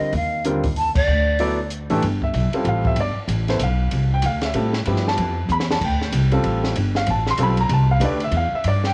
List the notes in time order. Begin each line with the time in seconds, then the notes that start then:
Already playing: D3 G3 C4 F4 A#4 D#5
0.00 muted upright bass stroke
0.13 D#2 F5, open hi-hat
0.45 D3 G3 C4 F4 A#4, closed hi-hat
0.64 kick, open hi-hat
0.76 A5, open hi-hat
0.95 D#2 D5, kick, crash
1.08 D2
1.39 F#3 B3 E4 A4 D5, open hi-hat
1.70 closed hi-hat
1.90 A1 E3 A3 D4 G4 A4, open hi-hat
2.02 G1, ride
2.22 E5, kick
2.33 B1, hi-hat pedal, ride
2.52 G3 C4 F4 A4, muted upright bass stroke, ride
2.64 A1 F5, ride
2.85 E5, kick
2.96 G1, ride
3.00 D5
3.16 muted upright bass stroke
3.27 A1, hi-hat pedal, ride
3.48 B3 E4 A4 C5, snare, ride
3.59 B1, hi-hat pedal, ride
3.63 F5
3.91 C2, ride
4.14 G5
4.22 D2 F5, hi-hat pedal, ride
4.42 E5, snare, ride
4.54 A2 G3 C4 F4 A4, ride
4.74 snare
4.86 G2 F3 B3 E4 G4, ride
4.97 snare
5.08 A5, snare
5.18 F2, ride
5.49 E2 B5, hi-hat pedal
5.60 snare
5.71 A5, snare
5.81 D2 G5, kick, crash
6.02 snare
6.12 C2, hi-hat pedal, ride
6.32 G3 C4 F4 A4, ride
6.43 A1, ride
6.64 snare
6.76 G1, ride
6.95 F5, snare
7.07 A1 A5, ride
7.27 C6, snare
7.37 B1 G3 C4 F4 A4, hi-hat pedal, ride
7.43 B5
7.57 A#5, ride
7.69 C2, ride
7.73 A5
7.91 F5
8.00 D2 A3 D4 G4 B4, hi-hat pedal, ride
8.05 D5
8.20 E5, ride
8.31 E2, ride
8.37 F5
8.52 E5, muted upright bass stroke
8.64 G2 D5, ride
8.84 G5, snare